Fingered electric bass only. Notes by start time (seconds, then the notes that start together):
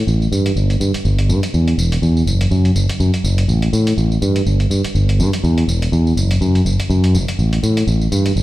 0.07 A1
0.32 G2
0.56 G1
0.80 G2
0.94 muted fingered electric bass stroke
1.05 G1
1.29 G2
1.54 E2
1.78 E1
2.02 E2
2.27 F#1
2.51 F#2
2.76 F#1
2.89 muted fingered electric bass stroke
3.00 F#2
3.24 F#1
3.48 A1
3.73 A2
3.97 A1
4.22 G2
4.46 G1
4.70 G2
4.85 muted fingered electric bass stroke
4.95 G1
5.20 G2
5.44 E2
5.68 E1
5.92 E2
6.17 F#1
6.41 F#2
6.65 F#1
6.79 muted fingered electric bass stroke
6.90 F#2
7.14 F#1
7.39 A1
7.63 A2
7.87 A1
8.12 G2
8.36 G1